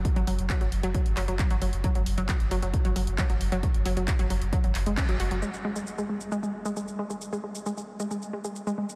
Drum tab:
HH |xxoxxxoxxxoxxxox|xxoxxxoxxxoxxxox|xxoxxxoxxxoxxxox|----------------|
SH |----------------|----------------|----------------|xx-xxx-xxx-xxx-x|
CP |----x-----x-x---|----x-------x---|----x-----x-x---|----------------|
BD |o---o---o---o---|o---o---o---o---|o---o---o---o---|----------------|

HH |----------------|
SH |xx-xxx-xxx-xxx-x|
CP |----------------|
BD |----------------|